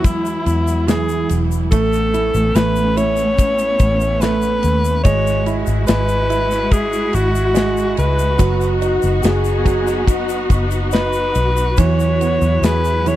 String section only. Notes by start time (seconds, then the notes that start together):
Already playing: F#3 G#3 E4
1.73 A3 B3 C#4
5.06 G#3 E4 F#4
8.41 B3 D#4
11.79 F#3 E4